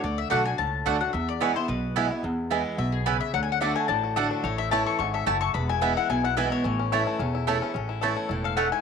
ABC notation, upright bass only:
X:1
M:4/4
L:1/8
Q:"Swing" 1/4=218
K:A
V:1 name="Upright bass" clef=bass
D,,2 B,,,2 C,,2 D,,2 | E,,4 B,,,4 | E,,4 B,,,4 | D,,4 A,,,4 |
A,,,4 G,,,2 F,,,2 | E,,,4 B,,,4 | A,,,4 E,,,4 | A,,,4 E,,,4 |]